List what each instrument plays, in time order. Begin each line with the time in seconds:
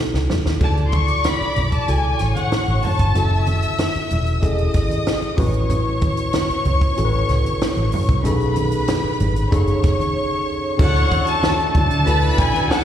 Already playing: tine electric piano C#4 D#4 F#4 A4
0.14 fingered electric bass C#2, snare
0.30 fingered electric bass E2, snare, high conga, low conga
0.46 fingered electric bass D#2, snare
0.60 fingered electric bass D2, tine electric piano C#3 E4 F#4 A4, string section D5 D6, violin section A5, kick, crash, muted conga, low conga
0.77 closed hi-hat
0.87 violin section C6
0.92 violin section C#6, kick, closed hi-hat, high conga
1.08 closed hi-hat
1.24 violin section B5, snare, closed hi-hat, muted conga, high conga
1.40 muted fingered electric bass stroke, closed hi-hat, muted conga
1.56 fingered electric bass B1, closed hi-hat, high conga, low conga
1.72 violin section A5, kick, closed hi-hat
1.87 fingered electric bass C#2, tine electric piano C#3 E4 F#4 A4, violin section G#5, closed hi-hat
2.05 muted conga
2.19 fingered electric bass A1, string section C#5 C#6, snare, closed hi-hat
2.36 violin section F#5, closed hi-hat, high conga
2.52 muted fingered electric bass stroke, snare, closed hi-hat, muted conga
2.67 fingered electric bass A1, closed hi-hat
2.82 violin section A5, open hi-hat, high conga, low conga
2.99 fingered electric bass G1, kick, closed hi-hat
3.14 fingered electric bass F#1, tine electric piano C#4 E4 F#4 A4, string section E5 E6, closed hi-hat, low conga
3.31 muted conga
3.46 closed hi-hat, high conga
3.62 closed hi-hat
3.78 snare, closed hi-hat, muted conga, high conga
3.94 muted fingered electric bass stroke, closed hi-hat, muted conga
4.11 fingered electric bass E1, closed hi-hat, high conga, low conga
4.27 closed hi-hat
4.42 fingered electric bass E1, tine electric piano C#4 E4 G#4 A4, string section D#5 D#6, kick, closed hi-hat, muted conga
4.58 closed hi-hat, muted conga
4.74 fingered electric bass G#1, kick, snare, closed hi-hat
4.90 closed hi-hat, high conga
5.06 snare, closed hi-hat, muted conga
5.22 closed hi-hat, muted conga
5.37 fingered electric bass A1, tine electric piano C#4 E4 F#4 B4, string section C#5 C#6, kick, open hi-hat, high conga, low conga
5.54 closed hi-hat
5.70 closed hi-hat, muted conga, low conga
5.85 muted conga
6.01 kick, closed hi-hat, high conga
6.17 closed hi-hat
6.33 snare, closed hi-hat, muted conga, high conga
6.50 muted fingered electric bass stroke, closed hi-hat
6.65 fingered electric bass C#2, closed hi-hat, high conga, low conga
6.81 kick, closed hi-hat
6.96 fingered electric bass A1, tine electric piano C#4 E4 F#4 A4, closed hi-hat
7.05 tine electric piano B4
7.13 muted conga
7.29 fingered electric bass C#2, snare, closed hi-hat
7.44 closed hi-hat, high conga
7.61 muted fingered electric bass stroke, snare, closed hi-hat
7.77 fingered electric bass A1, closed hi-hat, muted conga
7.92 open hi-hat, high conga, low conga
8.08 fingered electric bass C2, kick, closed hi-hat
8.24 fingered electric bass B1, tine electric piano C#4 D#4 G#4 A4, string section B4 B5, closed hi-hat, muted conga, low conga
8.40 closed hi-hat, muted conga
8.56 closed hi-hat, high conga
8.72 closed hi-hat
8.88 snare, closed hi-hat, muted conga, high conga
9.04 muted fingered electric bass stroke
9.20 fingered electric bass G#1, closed hi-hat, high conga, low conga
9.36 closed hi-hat
9.51 fingered electric bass F#1, tine electric piano C#4 D#4 G#4 A4, string section C#5 C#6, kick, closed hi-hat
9.67 closed hi-hat
9.83 fingered electric bass F#1, kick, snare, closed hi-hat
10.00 closed hi-hat, high conga
10.78 fingered electric bass D2, horn section F#3 A3 D4 A4, tine electric piano C#4 E4 F#4 A4, string section C#5 C#6, violin section F#5, kick, crash, muted conga, low conga
10.95 closed hi-hat, muted conga
11.11 kick, closed hi-hat, high conga
11.27 violin section A5, closed hi-hat
11.43 snare, muted conga, high conga
11.58 closed hi-hat, muted conga
11.75 fingered electric bass D2, violin section A5, kick, closed hi-hat, high conga, low conga
11.91 fingered electric bass D3, closed hi-hat
12.05 fingered electric bass D2, tine electric piano C#4 E4 F#4 A4, string section B4 B5, closed hi-hat
12.22 closed hi-hat, muted conga
12.38 fingered electric bass B1, violin section G#5, kick, snare, closed hi-hat, high conga
12.54 closed hi-hat, high conga
12.70 string section A4 A5, violin section F#5, muted fingered electric bass stroke, snare, muted conga